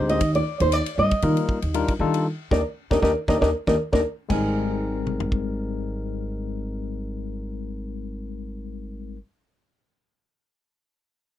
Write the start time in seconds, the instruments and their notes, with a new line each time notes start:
Already playing: upright bass D2, tine electric piano G#3 C4 D#4 G4 C5
0.09 nylon-string guitar D#5, ride
0.21 upright bass D#2, kick, ride
0.35 nylon-string guitar D5, ride
0.60 upright bass D#2, nylon-string guitar C5, ride
0.72 nylon-string guitar D5, ride
0.86 ride
0.98 upright bass G2, nylon-string guitar D#5
1.11 muted upright bass stroke, kick, ride
1.22 upright bass D#3, tine electric piano G3 A#3 D#4 F4 A#4, ride
1.37 ride
1.49 muted upright bass stroke, kick
1.62 upright bass D#2, ride
1.74 tine electric piano G3 D4 D#4 F4 A#4, ride
1.88 kick, ride
1.99 upright bass D#3, tine electric piano G3 D4 D#4 F4 A4
2.14 ride
2.51 upright bass D#2, tine electric piano D4 D#4 G4, nylon-string guitar A#4 D5 D#5, kick, snare
2.91 upright bass D#2, tine electric piano D4 D#4 G4, nylon-string guitar A#4 D5 D#5, kick, snare
3.02 upright bass D#2, tine electric piano D4 D#4 G4, nylon-string guitar A#4 D5 D#5, kick, snare
3.28 upright bass D#2, tine electric piano D4 D#4 G4, nylon-string guitar A#4 D5 D#5, kick, snare
3.41 upright bass D#2, tine electric piano D4 D#4 G4, nylon-string guitar A#4 D5 D#5, kick, snare
3.67 upright bass D#2, tine electric piano D4 D#4 G4, nylon-string guitar A#4 D5 D#5, kick, snare
3.92 upright bass D#2, tine electric piano D4 D#4 G4, nylon-string guitar A#4 D5 D#5, kick, snare
4.29 upright bass G#1, tine electric piano G3 G#3 C4 D#4 A#4, nylon-string guitar G#5, kick, crash
5.07 mid tom
5.20 floor tom
5.32 kick